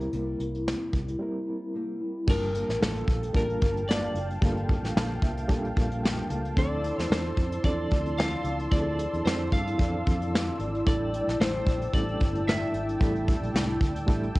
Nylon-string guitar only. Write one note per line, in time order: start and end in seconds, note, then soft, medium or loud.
0.00 0.12 G3 soft
0.00 0.13 A#3 soft
0.00 0.13 E4 medium
0.13 0.40 C3 medium
0.13 0.40 G3 medium
0.13 0.40 A#3 medium
0.13 0.39 E4 medium
0.40 0.66 G3 soft
0.40 0.66 A#3 medium
0.40 0.67 E4 medium
0.66 0.93 C3 medium
0.66 0.94 G3 medium
0.66 0.93 A#3 medium
0.66 0.92 E4 medium
0.93 1.19 G3 soft
0.93 1.20 A#3 medium
0.93 1.20 E4 soft
1.20 1.47 C3 medium
1.20 1.47 G3 medium
1.20 1.47 A#3 medium
1.20 1.46 E4 medium
1.47 1.74 G3 soft
1.47 1.74 A#3 medium
1.47 1.74 E4 medium
1.74 2.01 C3 medium
1.74 2.01 G3 medium
1.74 2.01 A#3 medium
1.74 1.99 E4 medium
2.00 2.29 G3 soft
2.00 2.28 A#3 soft
2.00 2.28 E4 soft
2.28 2.55 G2 medium
2.28 2.55 D3 medium
2.28 2.55 F3 medium
2.28 2.55 A#3 medium
2.28 2.54 F4 medium
2.28 2.53 A4 loud
2.54 2.81 F3 medium
2.54 2.81 A#3 medium
2.54 2.82 F4 medium
2.54 2.81 A4 medium
2.81 3.08 G2 medium
2.81 3.09 D3 medium
2.81 3.09 F3 medium
2.81 3.08 A#3 medium
2.81 3.08 F4 loud
2.81 3.06 A4 loud
3.08 3.33 F3 soft
3.08 3.34 A#3 soft
3.08 3.35 F4 medium
3.08 3.35 A4 medium
3.34 3.61 F3 medium
3.34 3.62 A#3 medium
3.34 3.61 F4 medium
3.34 3.60 A4 medium
3.61 3.88 F3 medium
3.61 3.89 F4 medium
3.61 3.88 A4 medium
3.88 4.15 G2 medium
3.88 4.16 D3 medium
3.88 4.16 F3 medium
3.88 4.15 A#3 medium
3.88 4.14 F4 medium
3.88 4.13 A4 medium
4.14 4.41 F3 medium
4.14 4.42 A#3 medium
4.14 4.42 F4 medium
4.14 4.42 A4 medium
4.42 4.69 G2 loud
4.42 4.69 D3 loud
4.42 4.69 F3 loud
4.42 4.69 A#3 loud
4.42 4.68 F4 loud
4.42 4.67 A4 loud
4.68 4.95 F3 medium
4.68 4.96 A#3 medium
4.68 4.96 F4 medium
4.68 4.96 A4 medium
4.95 5.23 G2 loud
4.95 5.23 D3 medium
4.95 5.23 F3 loud
4.95 5.23 A#3 loud
4.95 5.22 F4 loud
4.95 5.21 A4 loud
5.22 5.47 F3 soft
5.22 5.49 A#3 medium
5.22 5.49 F4 medium
5.22 5.49 A4 medium
5.49 5.76 F3 medium
5.49 5.76 A#3 medium
5.49 5.75 F4 medium
5.49 5.74 A4 medium
5.75 6.03 F3 medium
5.75 6.04 A#3 medium
5.75 6.03 F4 medium
5.75 6.03 A4 medium
6.03 6.30 G2 loud
6.03 6.30 D3 loud
6.03 6.31 F3 loud
6.03 6.30 A#3 loud
6.03 6.30 F4 loud
6.03 6.28 A4 medium
6.30 6.56 F3 medium
6.30 6.58 A#3 medium
6.30 6.57 F4 medium
6.30 6.57 A4 medium
6.57 6.84 D3 medium
6.57 6.84 F3 loud
6.57 6.83 C4 medium
6.57 6.82 E4 medium
6.83 7.10 F3 medium
6.83 7.10 C4 medium
6.83 7.10 E4 medium
7.10 7.37 D3 medium
7.10 7.38 F3 medium
7.10 7.37 C4 medium
7.10 7.36 E4 medium
7.37 7.64 F3 soft
7.37 7.65 C4 soft
7.37 7.64 E4 medium
7.64 7.91 D3 medium
7.64 7.92 F3 medium
7.64 7.91 C4 medium
7.64 7.89 E4 medium
7.90 8.17 F3 soft
7.90 8.18 C4 soft
7.90 8.18 E4 medium
8.18 8.45 D3 medium
8.18 8.45 F3 medium
8.18 8.45 C4 medium
8.18 8.44 E4 medium
8.45 8.71 F3 medium
8.45 8.71 C4 medium
8.45 8.72 E4 medium
8.71 8.98 D3 medium
8.71 8.99 F3 medium
8.71 8.98 C4 loud
8.71 8.97 E4 medium
8.98 9.25 F3 soft
8.98 9.25 C4 soft
8.98 9.25 E4 medium
9.25 9.52 D3 medium
9.25 9.52 F3 medium
9.25 9.52 C4 medium
9.25 9.50 E4 medium
9.51 9.78 F3 soft
9.51 9.79 C4 soft
9.51 9.79 E4 medium
9.78 10.05 D3 medium
9.78 10.06 F3 medium
9.78 10.06 C4 medium
9.78 10.04 E4 medium
10.06 10.32 F3 soft
10.06 10.33 C4 medium
10.06 10.33 E4 medium
10.32 10.59 D3 medium
10.32 10.60 F3 medium
10.32 10.59 C4 medium
10.32 10.58 E4 medium
10.59 10.86 F3 medium
10.59 10.86 C4 medium
10.59 10.86 E4 medium
10.85 11.13 A2 medium
10.85 11.13 D3 medium
10.85 11.13 G3 medium
10.85 11.13 D4 medium
10.85 11.12 E4 loud
11.13 11.39 G3 soft
11.13 11.40 E4 medium
11.39 11.66 A2 medium
11.39 11.67 D3 medium
11.39 11.67 G3 medium
11.39 11.66 D4 medium
11.39 11.65 E4 medium
11.66 11.93 G3 soft
11.66 11.94 D4 medium
11.66 11.93 E4 medium
11.93 12.20 D3 medium
11.93 12.21 G3 medium
11.93 12.20 D4 medium
11.93 12.19 E4 medium
12.20 12.47 G3 medium
12.20 12.47 D4 medium
12.20 12.47 E4 medium
12.46 12.74 A2 medium
12.46 12.74 D3 medium
12.46 12.74 G3 medium
12.46 12.74 D4 medium
12.46 12.72 E4 medium
12.73 13.00 G3 soft
12.73 13.00 D4 medium
12.73 13.01 E4 medium
13.00 13.27 A2 medium
13.00 13.27 D3 loud
13.00 13.28 G3 loud
13.00 13.27 D4 loud
13.00 13.25 E4 loud
13.29 13.53 G3 medium
13.53 13.81 A2 loud
13.53 13.81 D3 loud
13.53 13.81 G3 medium
13.53 13.79 D4 loud
13.53 13.78 E4 loud
13.79 14.06 G3 medium
13.79 14.07 D4 medium
13.79 14.07 E4 medium
14.06 14.34 D3 medium
14.06 14.35 G3 medium
14.06 14.33 D4 medium
14.06 14.32 E4 medium
14.33 14.39 G3 medium
14.33 14.39 D4 medium
14.33 14.39 E4 medium